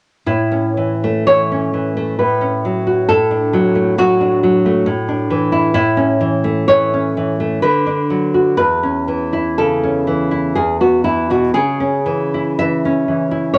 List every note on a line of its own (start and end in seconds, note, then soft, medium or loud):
0.26 2.17 A2 soft
0.26 1.24 E4 medium
0.51 1.50 C#4 soft
0.77 1.26 E3 soft
1.04 1.95 A3 soft
1.27 1.72 E3 soft
1.27 2.16 C#5 medium
1.52 2.20 C#4 soft
1.74 2.19 E3 soft
1.97 2.20 A3 soft
2.19 3.07 A2 soft
2.19 3.05 B4 medium
2.41 3.09 C#4 soft
2.65 3.10 F#3 soft
2.87 3.09 F#4 soft
3.09 4.83 A2 soft
3.09 3.94 A4 medium
3.31 4.20 D4 soft
3.53 3.97 F#3 soft
3.75 4.64 A3 soft
3.98 4.42 F#3 soft
3.98 5.52 F#4 medium
4.21 4.87 D4 soft
4.43 4.87 F#3 soft
4.66 4.87 A3 soft
4.86 5.72 A2 soft
5.09 5.74 D4 soft
5.30 5.75 E3 soft
5.52 5.73 E4 soft
5.74 7.58 A2 medium
5.74 6.66 E4 medium
5.97 6.92 C#4 soft
6.21 6.68 E3 soft
6.44 7.39 A3 soft
6.68 7.16 E3 soft
6.68 7.58 C#5 medium
6.94 7.63 C#4 soft
7.17 7.63 E3 soft
7.40 7.62 A3 soft
7.62 8.56 D3 soft
7.62 8.55 B4 medium
7.86 8.59 D4 soft
8.10 8.59 F#3 soft
8.34 8.59 F#4 soft
8.57 10.53 E2 soft
8.57 9.53 B4 medium
8.83 9.82 C#4 soft
9.08 10.06 E3 soft
9.33 10.30 E4 soft
9.58 10.57 C#3 soft
9.58 10.53 A4 medium
9.83 10.57 C#4 soft
10.07 10.57 E3 soft
10.31 10.56 E4 soft
10.55 11.51 E2 soft
10.55 10.81 G#4 medium
10.81 11.54 B3 soft
10.81 11.04 F#4 soft
11.04 11.54 E3 soft
11.04 11.29 E4 medium
11.30 11.54 B2 soft
11.30 11.54 F#4 soft
11.54 13.50 C#3 soft
11.54 12.55 G#4 medium
11.80 12.84 C#4 soft
12.06 12.58 E3 soft
12.34 13.30 E4 soft
12.59 13.07 E3 soft
12.59 13.51 E5 medium
12.85 13.55 C#4 soft
13.08 13.54 E3 soft
13.31 13.54 E4 soft
13.53 13.58 A2 soft
13.53 13.58 C#5 medium